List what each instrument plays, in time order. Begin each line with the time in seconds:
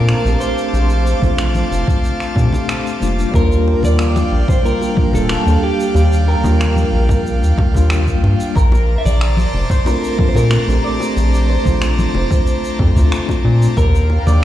Already playing: analog synth bass A#2, tine electric piano A#3 C4 D4 F4, clean electric guitar A#4, analog synth pad C5 F5 A5 D6
0.08 finger snap, shaker
0.22 analog synth bass A#1, tine electric piano A3 C4 D4, shaker
0.27 tine electric piano G4
0.40 clean electric guitar C5, shaker
0.58 shaker
0.73 analog synth bass A#1, shaker
0.90 shaker
1.07 shaker
1.20 analog synth bass A#1, tine electric piano A3 C4 D4, kick, high conga, low conga, shaker
1.25 tine electric piano F4
1.38 finger snap, shaker
1.55 high conga, shaker
1.71 analog synth bass F1, shaker
1.87 kick, low conga, shaker
2.04 shaker
2.20 finger snap, shaker
2.35 analog synth bass A#2, tine electric piano A3 C4 D4 G4, kick, shaker
2.53 low conga, shaker
2.69 finger snap, shaker
2.87 shaker
3.00 analog synth bass F1, tine electric piano G3 A#3 D4 F4, shaker
3.19 shaker
3.31 analog synth bass D#2, tine electric piano G3 A#3 D4, analog synth pad D4 F5 G5, kick, shaker
3.35 tine electric piano F4, clean electric guitar A#4
3.52 shaker
3.68 high bongo
3.83 analog synth bass D#2, clean electric guitar D5, high conga, low conga, shaker
3.99 finger snap, shaker
4.16 high bongo, high conga, shaker
4.32 analog synth bass A#1
4.48 clean electric guitar C5, kick, low conga, shaker
4.63 tine electric piano G3 A#3 D4 F4, clean electric guitar A#4, shaker
4.81 high bongo, shaker
4.95 tine electric piano G3 A#3 D4 F4, kick, high conga
5.13 analog synth bass D#1, clean electric guitar A4, low conga, shaker
5.29 finger snap, high bongo, shaker
5.43 analog synth bass D#2, tine electric piano G3 A#3 D4, shaker
5.49 tine electric piano G4
5.63 clean electric guitar G4
5.80 shaker
5.94 analog synth bass D#2, high bongo, shaker
6.13 shaker
6.28 clean electric guitar A#4
6.41 analog synth bass D#2, tine electric piano G3 A#3 D4, high bongo, high conga, low conga, shaker
6.47 tine electric piano F4
6.61 finger snap, shaker
6.76 high conga, shaker
6.93 analog synth bass A#1
7.09 kick, high bongo, low conga, shaker
7.26 shaker
7.42 analog synth bass D#2, shaker
7.58 kick, high bongo
7.72 analog synth bass D#2, tine electric piano G3 A#3 D4, low conga
7.76 tine electric piano F4, shaker
7.90 finger snap, shaker
8.07 kick, shaker
8.23 analog synth bass G2, high bongo
8.40 shaker
8.56 analog synth bass A#1, clean electric guitar A#4, analog synth pad C5 A5 A#5 D6, kick, shaker
8.72 high bongo, shaker
8.98 clean electric guitar E5
9.05 analog synth bass A#1, clean electric guitar D5, high conga, low conga, shaker
9.21 finger snap, shaker
9.37 high bongo, high conga, shaker
9.54 analog synth bass F1
9.70 clean electric guitar C5, kick, low conga, shaker
9.85 tine electric piano A3 C4 D4 F4, clean electric guitar A#4, high bongo, shaker
10.04 shaker
10.17 tine electric piano A3 C4 D4 F4, kick, high conga
10.29 clean electric guitar C5
10.35 analog synth bass A#2, clean electric guitar A#4, low conga, shaker
10.51 finger snap, high bongo, shaker
10.65 analog synth bass A#1, tine electric piano A3 C4 D4, shaker
10.71 tine electric piano G4
10.85 clean electric guitar D5
11.00 high bongo, shaker
11.16 analog synth bass A#1, shaker
11.34 shaker
11.50 clean electric guitar C5
11.63 analog synth bass A#1, tine electric piano A3 C4 D4, kick, high bongo, high conga, low conga, shaker
11.68 tine electric piano F4
11.82 finger snap, shaker
11.99 high conga, shaker
12.14 analog synth bass F1, high bongo
12.31 kick, low conga, shaker
12.47 shaker
12.65 shaker
12.79 analog synth bass F2, kick, high bongo
12.93 analog synth bass D2, tine electric piano A3 C4 D4, low conga, shaker
12.99 tine electric piano F4
13.12 finger snap, shaker
13.29 kick, high bongo, shaker
13.44 analog synth bass A#2
13.62 shaker
13.77 analog synth bass D#2, analog synth pad D4 F5 G5, clean electric guitar A#4, kick, shaker
13.95 shaker
14.10 high bongo
14.26 analog synth bass D#2, clean electric guitar D5, high conga, low conga, shaker